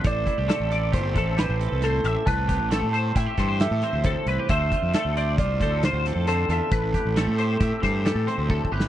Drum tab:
HH |x--x--x--x--x--x--x--x--x--x--|x--x--x--x--x--x--x--x--x--x--|x--x--x--x--x--x--x--x--x--x--|x--x--x--x--x--x--x--x--------|
SD |------o--o--o-----o-----------|------o-----o--o--o--o--------|------o--------o--o--o--------|---o--o--------o--o--o------o-|
BD |o--o--------o--o--------------|o--o--------o--o--------o-----|o--o--------o--o--------------|o--o--------o--o--------o-o---|